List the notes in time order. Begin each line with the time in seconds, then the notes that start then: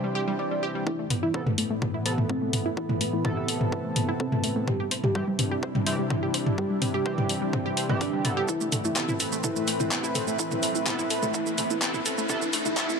Already playing: C3 E3 G3 C4 D4 E4 G4 D5
0.04 G3
0.15 G4
0.28 G3
0.39 G3 D5
0.51 G3
0.63 G4
0.75 G3
0.87 A2 E3 A3 B3 E4 A4, kick
0.99 A3
1.03 B5
1.10 B3, mid tom, open hi-hat
1.23 E4
1.34 C3 B3 A4 E5, kick
1.47 A3, mid tom
1.58 A3, open hi-hat
1.71 A3
1.82 B3, kick, mid tom
1.94 E4
2.06 C3 B3 A4, open hi-hat
2.18 A3, mid tom
2.29 A3 C4, kick
2.42 A3
2.53 B3, mid tom, open hi-hat
2.66 E4
2.77 E4 A4, kick
2.89 A3, mid tom
3.01 A3, open hi-hat
3.13 A3 E4
3.25 C3 B3 A4, kick, mid tom
3.37 E4
3.48 A4, open hi-hat
3.61 A3, mid tom
3.72 A3, kick
3.85 A3
3.96 B3, mid tom, open hi-hat
4.09 E4
4.20 C4 A4, kick
4.32 A3, mid tom
4.44 A3, open hi-hat
4.56 A3
4.67 C3 G3 C4 D4 E4 G4, kick, mid tom
4.80 G4
4.85 G4
4.91 C5, open hi-hat
5.04 G3 G4, mid tom
5.15 E3 G3 C4 G4 D5, kick
5.28 G3
5.39 C4, mid tom, open hi-hat
5.51 G4
5.63 C5, kick
5.75 G3, mid tom
5.86 E3 G3 C4 G4, open hi-hat
5.99 G3
6.10 C4 E4, kick, mid tom
6.23 G4
6.34 C5, open hi-hat
6.46 G3, mid tom
6.58 G3 G4, kick
6.70 G3
6.82 C4, mid tom, open hi-hat
6.94 G4
7.06 E3 C4 G4 C5, kick
7.18 G3, mid tom
7.29 G3, open hi-hat
7.42 G3
7.53 C4, kick, mid tom
7.66 G4
7.77 C5, open hi-hat
7.89 E3 G3 C4 G4, mid tom
8.01 G3 D4, kick, open hi-hat
8.13 G3
8.25 C3 B3 C4 A4, mid tom, open hi-hat
8.37 G4
8.48 A2 E3 C4 E4 A4 B4, kick, riser, shaker
8.61 A3, shaker
8.72 A3, mid tom, open hi-hat, shaker
8.85 A3 E4 E5, shaker
8.96 C3 B3 A4, kick, clap, shaker
9.09 E4, mid tom, shaker
9.20 A4, open hi-hat, shaker
9.26 B5
9.32 A3, shaker
9.44 E4 A4, kick, mid tom, shaker
9.56 A3, shaker
9.68 A3, open hi-hat, shaker
9.80 A3 E4, mid tom, shaker
9.91 C3 B3 A4, kick, clap, shaker
10.04 E4, shaker
10.15 A4, mid tom, open hi-hat, shaker
10.28 A3, shaker
10.39 E4 A4, kick, shaker
10.51 A3, mid tom, shaker
10.63 A3, open hi-hat, shaker
10.75 A3 E4, shaker
10.87 C3 B3 A4, kick, clap, mid tom, shaker
10.99 E4, shaker
11.10 A4, open hi-hat, shaker
11.23 A3, mid tom, shaker
11.34 E4 A4, kick, shaker
11.47 A3, shaker
11.58 A3, mid tom, open hi-hat, shaker
11.70 A3 E4, shaker
11.82 C3 B3 A4, kick, clap, shaker
11.94 E4, mid tom, shaker
12.06 A4, open hi-hat, shaker
12.18 A3, shaker
12.29 C3 G3 B3 C4 D4 E4 A4, kick, mid tom, shaker
12.42 A3, shaker
12.53 A3, open hi-hat, shaker
12.66 A3 E4 G4, mid tom, shaker
12.77 C3 B3 E4 A4, kick, clap, shaker
12.89 A3, shaker